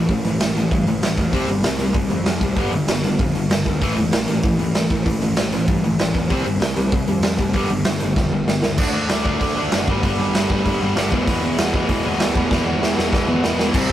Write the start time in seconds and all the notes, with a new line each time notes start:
0.09 A1 A2 E3, kick, open hi-hat
0.24 A1 A2 E3, open hi-hat
0.40 A1 A2 E3, snare, open hi-hat
0.56 A1 A2 E3, open hi-hat
0.71 G2 A2 E3, kick, open hi-hat
0.86 A1 A2 E3, open hi-hat
1.01 A1 A2 E3, snare, open hi-hat
1.18 E1 A2 E3, kick, open hi-hat
1.32 C2 C3 G3 C4, kick, open hi-hat
1.48 G1 C3 G3, open hi-hat
1.64 C2 C3 G3, snare, open hi-hat
1.79 C2 C3 G3, open hi-hat
1.94 C2 C3 G3, kick, open hi-hat
2.10 F2 C3 G3, open hi-hat
2.26 F2 C3 G3, snare, open hi-hat
2.41 C2 C3 G3, kick, open hi-hat
2.56 G1 G2 D3 G3, kick, open hi-hat
2.71 G1 G2 D3, open hi-hat
2.87 G1 G2 D3, snare, open hi-hat
3.02 G1 G2 D3, open hi-hat
3.19 F2 G2 D3, kick, open hi-hat
3.35 G1 G2 D3, open hi-hat
3.50 G1 G2 D3, snare, open hi-hat
3.66 D2 G2 D3, kick, open hi-hat
3.81 A1 A2 E3 A3, kick, open hi-hat
3.97 E1 A2 E3, open hi-hat
4.12 A1 A2 E3, snare, open hi-hat
4.27 A1 A2 E3, open hi-hat
4.43 A1 A2 E3, kick, open hi-hat
4.59 D2 A2 E3, open hi-hat
4.74 D2 A2 E3, snare, open hi-hat
4.90 A1 A2 E3, kick, open hi-hat
5.05 A1 A2 E3, kick, open hi-hat
5.21 A1 A2 E3, open hi-hat
5.36 A1 A2 E3, snare, open hi-hat
5.52 A1 A2 E3, open hi-hat
5.68 G2 A2 E3, kick, open hi-hat
5.83 A1 A2 E3, open hi-hat
5.99 A1 A2 E3, snare, open hi-hat
6.14 E1 A2 E3, kick, open hi-hat
6.29 C2 C3 G3 C4, kick, open hi-hat
6.44 G1 C3 G3, open hi-hat
6.59 C2 C3 G3, snare, open hi-hat
6.76 C2 C3 G3, open hi-hat
6.92 C2 C3 G3, kick, open hi-hat
7.08 F2 C3 G3, open hi-hat
7.23 F2 C3 G3, snare, open hi-hat
7.38 F1 C3 G3, kick, open hi-hat
7.53 G1 G2 D3 G3, kick, open hi-hat
7.70 G1 G2 D3, open hi-hat
7.85 G1 G2 D3, snare, open hi-hat
8.00 G1 G2 D3, open hi-hat
8.16 F2 G2 D3, kick, snare
8.32 G1 G2 D3
8.47 G1 G2 D3, snare
8.62 D2 G2 D3, snare
8.78 D2 D3 A3 D4, kick, crash
8.93 D3 A3 D4
9.09 D2 D3 A3 D4, snare, open hi-hat
9.23 D2 D3 A3 D4, kick
9.39 D2 D3 A3 D4, kick, open hi-hat
9.55 D2 D3 A3 D4
9.71 F#1 D3 A3 D4, snare, open hi-hat
9.87 G1 G2 D3 G3, kick
10.03 G1 G2 D3 G3, kick, open hi-hat
10.18 G1 G2 D3 G3
10.34 G1 G2 D3 G3, snare, open hi-hat
10.50 G1 G2 D3 G3, kick
10.66 G1 G2 D3 G3, kick, open hi-hat
10.80 G1 G2 D3 G3
10.95 G1 G2 D3 G3, snare, open hi-hat
11.11 E1 E2 B2 E3, kick
11.27 E1 E2 B2 E3, kick, open hi-hat
11.42 E2 B2 E3
11.58 E1 E2 B2 E3, snare, open hi-hat
11.74 E1 E2 B2 E3, kick
11.89 E1 E2 B2 E3, kick, open hi-hat
12.04 E1 E2 B2 E3
12.20 D2 E2 B2 E3, snare, open hi-hat
12.35 E1 E2 B2 E3, kick
12.51 E1 E2 B2 E3, kick, snare
12.66 E1 E2 B2 E3
12.82 E1 E2 B2 E3, snare
12.97 E1 E2 B2 E3, snare
13.13 E1 E2 B2 E3, kick, snare
13.28 E1 E2 B2 E3
13.43 E1 E2 B2 E3, snare
13.59 E2 B2 E3, snare
13.73 C2 C3 G3, kick, crash
13.77 C4